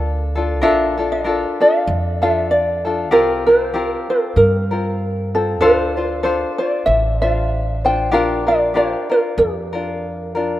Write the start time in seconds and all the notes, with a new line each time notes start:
Already playing: D2 D4 F4 A4
0.35 D4 F4 A4
0.61 A#1 D4 F4 A4 A#4 E5
0.97 D4 F4 A4
1.12 D5
1.24 D4 F4 A4 A#4
1.60 D4 F4 A4 F5
1.87 F2
2.22 D4 F4 A4 E5
2.51 D5
2.85 D4 F4 A4
3.11 C2 C4 F4 G4 A#4
3.47 C4 F4 A#4 C5
3.74 C4 F4 G4 A#4
4.10 C4 F4 A4
4.36 G2 A#4
4.71 C4 F4 A#4
5.35 C4 F4 A4
5.61 D2 D4 F4 A4 C5
5.97 D4 F4 C5
6.23 D4 F4 A4 C5
6.58 D4 F4 C5 D5
6.86 A1 E5
7.21 D4 F4 C5 F5
7.85 D4 F4 C5 G5
8.12 A#1 D4 F4 G4 A#4 F5
8.47 D4 F4 A#4 D5
8.74 D4 F4 G4 A#4 C5
9.09 D4 F4 A#4
9.38 F2 G4
9.73 D4 F4 A#4
10.35 D4 F4 A#4